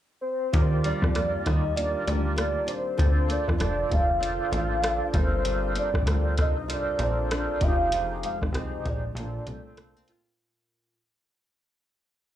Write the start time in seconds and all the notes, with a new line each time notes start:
0.21 C5
0.52 D#2 D#3 F4 G4 A#4 D5, kick, closed hi-hat
0.84 G3 D5, closed hi-hat
1.02 F2, kick, cross-stick
1.14 A#3 F4 G4 A#4 D5, cross-stick, closed hi-hat
1.45 D#2 G3 D#5, kick, cross-stick, closed hi-hat
1.75 A#3 F4 G4 A#4 D5, closed hi-hat
2.07 D2 G3 D5, closed hi-hat
2.36 A#3 D5, cross-stick, closed hi-hat
2.67 D4 C5, closed hi-hat
2.98 D2 D3 F4 A4 C5 D5, kick, closed hi-hat
3.29 A#3 D5, closed hi-hat
3.48 F2, kick, cross-stick
3.58 F1 D4 F4 A4 C5 D5, cross-stick, closed hi-hat
3.89 F1 A#3, kick, closed hi-hat
3.93 F5
4.19 D4 F4 A4 C5 D5, closed hi-hat
4.51 A1 A#3, closed hi-hat
4.82 D4, cross-stick, closed hi-hat
5.12 G1 G2 F4 A4 A#4 C5, kick, closed hi-hat
5.16 C5
5.45 G2, closed hi-hat
5.75 C4 D5, closed hi-hat
5.94 A#1, kick, cross-stick
6.06 D2 F4 A4 A#4 C5, cross-stick, closed hi-hat
6.37 C2 C4, kick, cross-stick, closed hi-hat
6.41 D#5
6.68 D4 F4 A4 A#4 C5, closed hi-hat
6.73 D5
6.99 A#1 C4 D5, closed hi-hat
7.31 D4 D5, cross-stick, closed hi-hat
7.61 F1 F2 D#4 G4 G#4 C5 F5, kick, closed hi-hat
7.92 F2, closed hi-hat
8.23 G#3 F5, closed hi-hat
8.42 G#1, kick, cross-stick
8.53 C2 C4 D#4 G4 G#4 C5, cross-stick, closed hi-hat
8.58 D#5
8.85 A#1 G#3 D5, kick, closed hi-hat
9.15 A#1 A#2 D4 F4 A4 C5, closed hi-hat
9.47 C2 A3, closed hi-hat
9.77 A#3, cross-stick, closed hi-hat
9.96 C4
10.08 F4, closed hi-hat